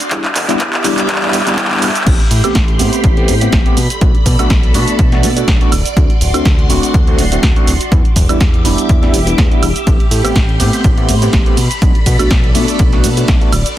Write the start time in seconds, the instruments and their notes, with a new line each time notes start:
0.00 closed hi-hat, shaker
0.11 analog synth bass E2, tine electric piano G3 B3 D4 E4, string machine G4 E5 D6, kick, clap, closed hi-hat, shaker
0.24 clap, closed hi-hat
0.36 analog synth bass E1, kick, clap, open hi-hat, shaker
0.48 analog synth bass E2, tine electric piano G3 B3 D4 E4, clap, closed hi-hat, shaker
0.60 analog synth bass E2, kick, clap, closed hi-hat, shaker
0.73 clap, closed hi-hat
0.84 analog synth bass E1, tine electric piano G3 B3 D4 E4, clap, open hi-hat, shaker
0.98 clap, closed hi-hat, shaker
1.09 analog synth bass E2, kick, clap, closed hi-hat, shaker
1.15 clap
1.22 tine electric piano G3 B3 D4 E4, clap, closed hi-hat
1.28 clap
1.33 analog synth bass E1, clap, open hi-hat, shaker
1.40 clap
1.46 tine electric piano G3 B3 D4 E4, clap, closed hi-hat, shaker
1.52 clap
1.58 analog synth bass E2, kick, clap, closed hi-hat, shaker
1.65 clap
1.71 tine electric piano G3 B3 D4 E4, clap, closed hi-hat
1.77 clap
1.82 analog synth bass E1, clap, open hi-hat, shaker
1.89 clap
1.95 clap, closed hi-hat, shaker
2.01 clap
2.06 analog synth bass A1, tine electric piano A3 B3 C4 G4, string machine G4 B5 C6, kick, closed hi-hat, crash, shaker
2.20 closed hi-hat
2.31 analog synth bass A2, open hi-hat, shaker
2.44 analog synth bass A1, tine electric piano A3 B3 C4 G4, closed hi-hat, high woodblock, shaker
2.55 analog synth bass A1, kick, snare, closed hi-hat, shaker
2.68 closed hi-hat
2.79 analog synth bass A2, tine electric piano A3 B3 C4 G4, open hi-hat, shaker
2.93 closed hi-hat, shaker
3.04 analog synth bass A1, kick, closed hi-hat, shaker
3.17 tine electric piano A3 B3 C4 G4, closed hi-hat
3.28 analog synth bass A2, open hi-hat, shaker
3.41 tine electric piano A3 B3 C4 G4, closed hi-hat, shaker
3.52 analog synth bass A1, kick, snare, closed hi-hat, shaker
3.66 tine electric piano A3 B3 C4 G4, closed hi-hat
3.77 analog synth bass B2, string machine A4 D5, open hi-hat, shaker
3.90 closed hi-hat, shaker
4.01 analog synth bass B1, tine electric piano A3 B3 D4 F#4, kick, closed hi-hat, shaker
4.15 closed hi-hat
4.26 analog synth bass B2, kick, open hi-hat, shaker
4.39 analog synth bass B1, tine electric piano A3 B3 D4 F#4, closed hi-hat, high woodblock, shaker
4.50 analog synth bass B1, kick, snare, closed hi-hat, shaker
4.63 closed hi-hat
4.74 analog synth bass B2, tine electric piano A3 B3 D4 F#4, open hi-hat, shaker
4.88 closed hi-hat, shaker
4.99 analog synth bass B1, kick, closed hi-hat, shaker
5.12 tine electric piano A3 B3 D4 F#4, snare, closed hi-hat
5.23 analog synth bass B2, open hi-hat, shaker
5.36 tine electric piano A3 B3 D4 F#4, closed hi-hat, shaker
5.48 analog synth bass B1, kick, snare, closed hi-hat, shaker
5.61 tine electric piano A3 B3 D4 F#4, closed hi-hat
5.72 analog synth bass D1, string machine F#4 C6, open hi-hat, high woodblock, shaker
5.85 closed hi-hat, shaker
5.96 analog synth bass D2, tine electric piano A3 C4 D4 F#4, kick, closed hi-hat, shaker
6.10 closed hi-hat
6.21 analog synth bass D1, open hi-hat, shaker
6.34 analog synth bass D2, tine electric piano A3 C4 D4 F#4, closed hi-hat, high woodblock, shaker
6.45 analog synth bass D2, kick, snare, closed hi-hat, shaker
6.59 closed hi-hat
6.69 analog synth bass D1, tine electric piano A3 C4 D4 F#4, open hi-hat, shaker
6.83 closed hi-hat, shaker
6.94 analog synth bass D2, kick, closed hi-hat, shaker
7.07 tine electric piano A3 C4 D4 F#4, closed hi-hat
7.18 analog synth bass D1, open hi-hat, shaker
7.31 tine electric piano A3 C4 D4 F#4, closed hi-hat, shaker
7.43 analog synth bass D2, kick, snare, closed hi-hat, shaker
7.56 tine electric piano A3 C4 D4 F#4, closed hi-hat
7.67 analog synth bass D1, open hi-hat, shaker
7.81 closed hi-hat, shaker
7.91 analog synth bass E2, tine electric piano G3 B3 D4 E4, string machine G4 E5 D6, kick, closed hi-hat, shaker
8.05 closed hi-hat
8.16 analog synth bass E1, kick, open hi-hat, shaker
8.29 analog synth bass E2, tine electric piano G3 B3 D4 E4, closed hi-hat, high woodblock, shaker
8.40 analog synth bass E2, kick, snare, closed hi-hat, shaker
8.54 closed hi-hat
8.64 analog synth bass E1, tine electric piano G3 B3 D4 E4, open hi-hat, shaker
8.78 closed hi-hat, shaker
8.89 analog synth bass E2, kick, closed hi-hat, shaker
9.02 tine electric piano G3 B3 D4 E4, snare, closed hi-hat
9.14 analog synth bass E1, open hi-hat, shaker
9.26 tine electric piano G3 B3 D4 E4, closed hi-hat, shaker
9.38 analog synth bass E2, kick, snare, closed hi-hat, shaker
9.51 tine electric piano G3 B3 D4 E4, closed hi-hat
9.62 analog synth bass E1, open hi-hat, high woodblock, shaker
9.76 closed hi-hat, shaker
9.86 analog synth bass A1, tine electric piano A3 B3 C4 G4, string machine B5 C6, kick, closed hi-hat, ride, shaker
10.00 closed hi-hat
10.11 analog synth bass A2, open hi-hat, ride, shaker
10.24 analog synth bass A1, tine electric piano A3 B3 C4 G4, closed hi-hat, high woodblock, shaker
10.36 analog synth bass A1, kick, snare, closed hi-hat, ride, shaker
10.49 closed hi-hat
10.59 analog synth bass A2, tine electric piano A3 B3 C4 G4, open hi-hat, ride, shaker
10.73 closed hi-hat, shaker
10.84 analog synth bass A1, kick, closed hi-hat, ride, shaker
10.97 tine electric piano A3 B3 C4 G4, closed hi-hat
11.09 analog synth bass A2, open hi-hat, ride, shaker
11.22 tine electric piano A3 B3 C4 G4, closed hi-hat, shaker
11.33 analog synth bass A1, kick, snare, closed hi-hat, ride, shaker
11.46 tine electric piano A3 B3 C4 G4, closed hi-hat
11.57 analog synth bass B2, string machine A4 D5, open hi-hat, ride, shaker
11.71 closed hi-hat, shaker
11.81 analog synth bass B1, tine electric piano A3 B3 D4 F#4, kick, closed hi-hat, ride, shaker
11.95 closed hi-hat
12.06 analog synth bass B2, kick, open hi-hat, ride, shaker
12.19 analog synth bass B1, tine electric piano A3 B3 D4 F#4, closed hi-hat, high woodblock, shaker
12.31 analog synth bass B1, kick, snare, closed hi-hat, ride, shaker
12.44 closed hi-hat
12.54 analog synth bass B2, tine electric piano A3 B3 D4 F#4, open hi-hat, ride, shaker
12.68 closed hi-hat, shaker
12.79 analog synth bass B1, kick, closed hi-hat, ride, shaker
12.92 tine electric piano A3 B3 D4 F#4, snare, closed hi-hat
13.04 analog synth bass B2, open hi-hat, ride, shaker
13.17 tine electric piano A3 B3 D4 F#4, closed hi-hat, shaker
13.28 analog synth bass B1, kick, snare, closed hi-hat, ride, shaker
13.41 tine electric piano A3 B3 D4 F#4, closed hi-hat
13.53 analog synth bass D1, string machine F#4 C6, open hi-hat, ride, high woodblock, shaker
13.66 closed hi-hat, shaker